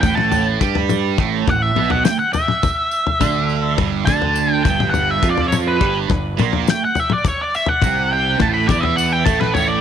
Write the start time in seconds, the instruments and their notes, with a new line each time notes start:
0.01 fingered electric bass A1, distorted electric guitar A2 A3, lead electric guitar G5, kick, floor tom, tambourine
0.15 lead electric guitar A5, mid tom
0.32 floor tom, tambourine
0.61 fingered electric bass G2, distorted electric guitar G3 G4, kick, tambourine
0.75 floor tom
0.89 mid tom, tambourine
1.18 fingered electric bass A1, distorted electric guitar A2 A3, kick
1.47 fingered electric bass A1, distorted electric guitar A2, lead electric guitar F#5, kick, floor tom, tambourine
1.62 lead electric guitar E5
1.76 fingered electric bass B1, distorted electric guitar B2 B3, mid tom
1.90 lead electric guitar F#5, floor tom
2.05 lead electric guitar G5, snare, tambourine
2.19 lead electric guitar F#5
2.33 lead electric guitar E5, floor tom, tambourine
2.48 mid tom
2.63 kick, floor tom, tambourine
2.91 tambourine
3.07 floor tom
3.20 fingered electric bass D2, distorted electric guitar D3 D4, kick, mid tom, tambourine
3.49 tambourine
3.78 fingered electric bass G1, distorted electric guitar G2 G3, kick, floor tom, tambourine
4.05 fingered electric bass D2, distorted electric guitar D3 D4, lead electric guitar A5, kick, mid tom, tambourine
4.22 floor tom
4.36 tambourine
4.52 lead electric guitar G5
4.63 fingered electric bass G1, distorted electric guitar G2 G3, lead electric guitar G5, kick, floor tom, tambourine
4.80 mid tom
4.90 lead electric guitar F#5, floor tom
4.95 tambourine
5.11 lead electric guitar E5
5.22 fingered electric bass F2, distorted electric guitar F3 F4, kick, tambourine
5.30 lead electric guitar D5
5.38 floor tom
5.48 lead electric guitar C#5
5.52 mid tom, tambourine
5.68 lead electric guitar B4
5.79 fingered electric bass G1, distorted electric guitar G2 G3, kick
6.08 fingered electric bass G1, distorted electric guitar G2, kick, floor tom, tambourine
6.37 fingered electric bass A#1, distorted electric guitar A#2 A#3, mid tom, tambourine
6.53 floor tom
6.68 lead electric guitar G5, snare, tambourine
6.85 lead electric guitar F#5
6.95 floor tom, tambourine
7.00 lead electric guitar E5
7.10 lead electric guitar D5, mid tom
7.25 lead electric guitar C#5, kick, floor tom, tambourine
7.41 lead electric guitar D5
7.54 lead electric guitar E5, tambourine
7.66 lead electric guitar F#5, floor tom
7.82 fingered electric bass C2, distorted electric guitar C3 C4, kick, mid tom, tambourine
8.13 lead electric guitar G5
8.40 fingered electric bass A1, distorted electric guitar A2 A3, lead electric guitar A5, kick, floor tom, tambourine
8.54 lead electric guitar B5
8.68 fingered electric bass E2, distorted electric guitar E3 E4, lead electric guitar D5, kick, mid tom, tambourine
8.81 lead electric guitar E5, floor tom
8.96 lead electric guitar F#5, tambourine
9.12 lead electric guitar G5
9.25 fingered electric bass A1, distorted electric guitar A2 A3, lead electric guitar A5, kick, floor tom, tambourine
9.40 lead electric guitar B4, mid tom
9.54 lead electric guitar C#5, floor tom, tambourine
9.68 lead electric guitar D5